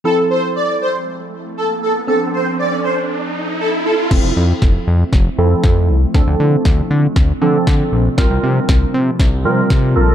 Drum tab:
CC |--------|--------|x-------|--------|
SD |--------|--------|o-o-o-o-|o-o-o-o-|
BD |--------|--------|o-o-o-o-|o-o-o-o-|

CC |--------|
SD |o-o-o-o-|
BD |o-o-o-o-|